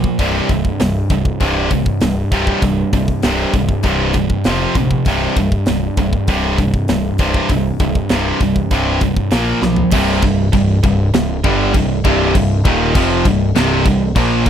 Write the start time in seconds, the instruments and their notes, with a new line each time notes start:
Already playing: distorted electric guitar A#2 F3
0.04 kick
0.19 picked electric bass C1, distorted electric guitar C2 G2 C3, kick, open hi-hat
0.49 picked electric bass C1, distorted electric guitar C2 G2, kick, open hi-hat
0.65 kick
0.80 picked electric bass C1, distorted electric guitar C2 G2, snare, open hi-hat
1.10 picked electric bass C1, distorted electric guitar C2 G2, kick, open hi-hat
1.25 kick
1.40 picked electric bass C1, distorted electric guitar C2 G2 C3, kick, open hi-hat
1.70 distorted electric guitar C2 G2, kick, open hi-hat
1.86 kick
2.01 picked electric bass C1, distorted electric guitar C2 G2, snare, open hi-hat
2.31 picked electric bass C1, distorted electric guitar C2 G2 C3, kick, open hi-hat
2.47 kick
2.62 picked electric bass C1, distorted electric guitar C2 G2, kick, open hi-hat
2.93 picked electric bass C1, distorted electric guitar C2 G2, kick, open hi-hat
3.08 kick
3.22 picked electric bass C1, distorted electric guitar C2 G2 C3, snare, open hi-hat
3.54 picked electric bass C1, distorted electric guitar C2 G2, kick, open hi-hat
3.69 kick
3.83 picked electric bass C1, distorted electric guitar C2 G2 C3, kick, open hi-hat
4.13 distorted electric guitar C2 G2, kick, open hi-hat
4.30 kick
4.44 picked electric bass F1, distorted electric guitar F2 C3 F3, snare, open hi-hat
4.75 picked electric bass A#1, distorted electric guitar F2 C3, kick, open hi-hat
4.91 kick
5.05 picked electric bass C1, distorted electric guitar C2 G2 C3, kick, open hi-hat
5.36 picked electric bass C1, distorted electric guitar C2 G2, kick, open hi-hat
5.52 kick
5.66 picked electric bass C1, distorted electric guitar C2 G2, snare, open hi-hat
5.97 picked electric bass C1, distorted electric guitar C2 G2, kick, open hi-hat
6.13 kick
6.27 picked electric bass C1, distorted electric guitar C2 G2 C3, kick, open hi-hat
6.58 distorted electric guitar C2 G2, kick, open hi-hat
6.74 kick
6.88 picked electric bass C1, distorted electric guitar C2 G2, snare, open hi-hat
7.18 picked electric bass C1, distorted electric guitar C2 G2 C3, kick, open hi-hat
7.34 kick
7.49 picked electric bass C1, distorted electric guitar C2 G2, kick, open hi-hat
7.79 picked electric bass C1, distorted electric guitar C2 G2, kick, open hi-hat
7.95 kick
8.09 picked electric bass C1, distorted electric guitar C2 G2 C3, snare, open hi-hat
8.40 picked electric bass C1, distorted electric guitar C2 G2, kick, open hi-hat
8.56 kick
8.71 picked electric bass C1, distorted electric guitar C2 G2 C3, kick, open hi-hat
9.01 distorted electric guitar C2 G2, kick, open hi-hat
9.16 kick
9.31 picked electric bass A#1, distorted electric guitar A#2 F3 A#3, snare, open hi-hat
9.62 picked electric bass B1, distorted electric guitar A#2 F3, snare
9.76 floor tom
9.91 picked electric bass C1, distorted electric guitar C2 G2 C3, kick, crash
10.22 picked electric bass C1, distorted electric guitar C2 G2, kick, crash
10.53 picked electric bass C1, distorted electric guitar C2 G2, kick, crash
10.84 picked electric bass C1, distorted electric guitar C2 G2, kick, crash
11.14 picked electric bass C1, distorted electric guitar C2 G2, snare, crash
11.44 picked electric bass G1, distorted electric guitar G2 D3 G3, kick, crash
11.74 picked electric bass C1, distorted electric guitar C2 G2, kick, crash
12.04 picked electric bass C1, distorted electric guitar C2 G2 C3, kick, crash
12.35 picked electric bass C1, distorted electric guitar C2 G2, kick, crash
12.65 picked electric bass D#1, distorted electric guitar D#2 A#2 D#3, kick, crash
12.95 picked electric bass F1, distorted electric guitar F2 C3 F3, kick, crash
13.25 picked electric bass C1, distorted electric guitar C2 G2, kick, crash
13.55 picked electric bass C1, distorted electric guitar C2 G2 C3, snare, crash
13.85 picked electric bass C1, distorted electric guitar C2 G2, kick, crash
14.16 picked electric bass A#1, distorted electric guitar A#2 F3 A#3, kick, crash
14.46 picked electric bass C1, overdriven electric guitar C2, kick, crash